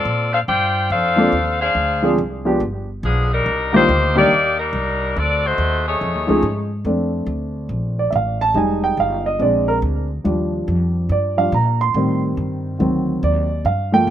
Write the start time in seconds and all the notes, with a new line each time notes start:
Already playing: C4 F4 A4 D5
0.05 A#2
0.33 D4 A4 C5 F5
0.48 G2 F4 C5 D5 G5
0.90 F2 D4 A4 C5 F5
1.16 F3 A#3 C4 D4 A4
1.32 D#2
1.61 D4 G#4 C5 F5
1.75 D2
2.02 F3 G#3 C4 D4 G#4
2.18 C2
2.45 F3 G#3 B3 D4 G4
2.60 G1
3.03 B1 F3 B3 D4 G#4
3.33 G3 D4 D#4 A#4
3.46 C2
3.73 D#3 G3 A#3 D4 D#4 F4 G4 C5
3.89 D2
4.15 D#3 G3 A#3 D4 D#4 G4 D5
4.31 D#2
4.60 G3 D4 D#4 A#4
4.73 C2
5.16 D2 C4 F#4 A4 D5
5.46 A3 D#4 F#4 C5
5.58 D#2
5.88 A3 D#4 G#4 C#5
6.01 F2
6.15 D#2
6.27 C#2 F3 A3 C#4 D#4 G#4
6.43 G#2
6.85 F2 A3 C4 D4
7.26 D2
7.69 A#1
7.99 D5
8.11 A1 E5
8.16 F5
8.41 A5
8.54 F1 G3 G#3 D#4 G#5
8.84 G5
8.97 G1 F5
9.26 D#5
9.39 A#1 G#3 C4 D4 D5
9.68 A#4
9.82 D2
10.24 D#2 F3 G3 D4
10.68 F2
11.09 G2 D5
11.37 F3 G3 D4 F5
11.52 A#2 A#5
11.81 C6
11.94 A2 D#3 G3 C4
12.37 G2
12.79 D2 D#3 F#3 C4
13.23 D#2 D5
13.65 G2 F5
13.92 F3 A3 A#3 G5